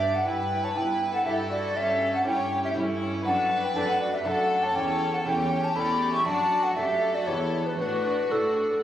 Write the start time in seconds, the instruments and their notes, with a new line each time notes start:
Already playing: lute G2 B3 D4, cello section G2, violin section G4 D5, flute E5
0.01 viola section D4
0.13 violin section A4, flute F#5
0.26 lute G2, cello section G2, viola section E4, violin section B4, flute G5
0.51 viola section E4
0.64 violin section C#5, flute A5
0.75 lute G2 B3 E4, cello section G2, viola section E4, violin section B4, flute G5
1.00 viola section E4
1.13 violin section A4, flute F#5
1.25 lute G2 B3 E4, cello section G2, viola section E4, violin section G4 A4, flute E5
1.50 viola section E4, violin section F#4, flute D5
1.75 lute G2, cello section G2, viola section C#4, violin section G4, flute E5
2.00 viola section C#4
2.13 violin section A4, flute F#5
2.24 lute G2 A3 C#4 E4, cello section G2, viola section C#4, violin section G4 C#5, flute G5
2.51 viola section C#4
2.63 violin section G4, flute E5
2.74 lute G2 A3 C#4 E4, cello section G2, viola section C#4, violin section E4
3.01 viola section C#4
3.24 lute F#2, cello section F#2, viola section D4, violin section A4 B4, flute F#5
3.50 viola section D4
3.62 violin section B4, flute G5
3.75 cello section F#2, lute F#2 A3 D4 A4, viola section D4, violin section D5, flute A5
3.88 violin section A4, flute F#5
4.00 viola section D4, violin section F#4, flute D5
4.13 violin section G4, flute E5
4.25 lute F#2 A3 D4 A4, cello section F#2, viola section D4, violin section A4, flute F#5
4.50 viola section D4
4.63 violin section C#5, flute A5
4.75 cello section E2, lute E2, viola section C#4, violin section C#5, flute G5
5.00 viola section C#4
5.13 violin section A4, flute F#5
5.25 cello section E2, lute E2 A3 C#4 A4, viola section C#4, violin section G4 C#5, flute G5
5.50 viola section C#4
5.63 violin section C#5, flute A5
5.75 lute E2 A3 C#4 A4, cello section E2, viola section C#4, violin section D5, flute B5
6.00 viola section C#4
6.13 violin section E5, flute C#6
6.25 cello section F#2, lute F#2, viola section D4, violin section F#4 D5, flute A5
6.50 viola section D4
6.63 violin section A4, flute F#5
6.75 lute F#2 A3 D4 A4, cello section F#2, viola section D4, violin section G4 A4, flute E5
7.01 viola section D4
7.14 violin section F#4, flute D5
7.27 lute E2 B3 E4 G4, cello section E2, viola section B3, violin section E4, flute C#5
7.52 viola section B3
7.66 violin section D4, flute B4
7.79 cello section A2, lute A2, viola section D4, violin section D4 F#4, flute B4
8.05 viola section D4
8.31 lute A2 A3 D4 F#4, cello section A2, viola section D4, violin section D4, flute A4
8.57 viola section D4